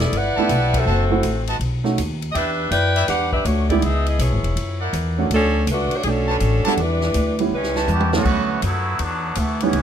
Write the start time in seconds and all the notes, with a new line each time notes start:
Already playing: E1 B3 E4 A4 D5
0.12 G1, ride
0.17 E4 B4 D5 F#5
0.36 A3 B3 D4 E4 G4 B4 E5 A5, muted upright bass stroke
0.49 B1, hi-hat pedal, ride
0.74 kick, ride
0.79 C4 F#4 A4 E5
0.86 F#1 F#4 C5 E5 A5
1.10 A3 C4 E4 F#4
1.23 A1, hi-hat pedal, ride
1.47 F#4 B4 D#5 A5, ride
1.59 B1, ride
1.84 A3 C#4 D#4 F#4, snare
1.98 D#2, hi-hat pedal, ride
2.22 ride
2.32 E2 E4 G4 B4 D5 D#5 E5 G5, ride
2.36 D4 B4
2.71 F#2 E4 B4 D5 G5, hi-hat pedal, ride
2.96 E4 B4 D5 E5, ride
3.08 E2 D4 G4 B4 F#5, snare, ride
3.33 D4 G4 B4 E5, kick
3.45 D2 A3 D4 F#4 C#5, hi-hat pedal, ride
3.70 G#3 B3 D#4 E4 G4 D5, kick, ride
3.82 C#2 B3 D#4 G#4 E5, ride
4.06 B3 E4 G#4 D#5, ride
4.19 B1 B3 E4 G#4 C#5, hi-hat pedal, ride
4.31 G#1
4.43 E1, ride
4.56 F#2, ride
4.80 E4 A#4 D5 F#5
4.93 E2, hi-hat pedal, ride
5.18 A3 C#4 D4 F#4
5.30 D2 C#4, ride
5.34 F#3 D4 A4
5.67 C#2, hi-hat pedal, ride
5.72 A3 D4 F#4 B4
5.91 muted upright bass stroke, ride
5.96 A3 D4 F#4 C#5
6.03 B1 A3 C#4 D4 F#4 G#4, ride
6.09 F#3 C#4 D4 A4
6.28 D4 B4 C#5 A5
6.40 A1, hi-hat pedal, ride
6.65 G3 B3 D4 E4 F#4 B4 D5 A5, muted upright bass stroke, ride
6.77 E2 G3 D4 B4, ride
6.81 E4
7.01 snare
7.14 D2, hi-hat pedal, ride
7.39 G3 B3 C#4 E4, ride
7.51 C#2 G3 C#4 B4
7.55 E4
7.63 snare
7.76 G4 B4 C#5 A5, snare
7.86 E2 E3 B3 C#4 F#4 G4, hi-hat pedal, high tom
8.00 high tom
8.13 D2 E3 F#3 A3 B3 C#4 F#4, snare
8.25 D2, kick, crash
8.62 F#2 F#3 A3 B3 E4, hi-hat pedal, ride
8.99 E2 F#3 A3 B3 D4, ride
9.35 D2 E3 F#3 A3 B3, hi-hat pedal, ride
9.60 E3 G3 B3 C#4 D#4, ride
9.73 C#2, ride